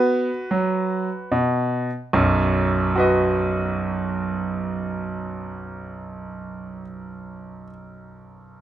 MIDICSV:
0, 0, Header, 1, 2, 480
1, 0, Start_track
1, 0, Key_signature, 5, "major"
1, 0, Tempo, 794702
1, 792, Tempo, 815217
1, 1273, Time_signature, 3, 2, 24, 8
1, 5090, End_track
2, 0, Start_track
2, 0, Title_t, "Grand piano"
2, 0, Program_c, 0, 0
2, 0, Note_on_c, 0, 59, 68
2, 0, Note_on_c, 0, 66, 69
2, 0, Note_on_c, 0, 71, 87
2, 169, Note_off_c, 0, 59, 0
2, 307, Note_on_c, 0, 54, 61
2, 646, Note_off_c, 0, 54, 0
2, 770, Note_off_c, 0, 66, 0
2, 790, Note_off_c, 0, 71, 0
2, 794, Note_on_c, 0, 47, 64
2, 1131, Note_off_c, 0, 47, 0
2, 1276, Note_on_c, 0, 35, 66
2, 1276, Note_on_c, 0, 42, 70
2, 1411, Control_c, 0, 64, 127
2, 1760, Note_on_c, 0, 66, 55
2, 1773, Note_on_c, 0, 71, 50
2, 1784, Note_on_c, 0, 75, 52
2, 4035, Note_off_c, 0, 35, 0
2, 4036, Note_off_c, 0, 42, 0
2, 4520, Note_off_c, 0, 66, 0
2, 4532, Note_off_c, 0, 71, 0
2, 4544, Note_off_c, 0, 75, 0
2, 5090, End_track
0, 0, End_of_file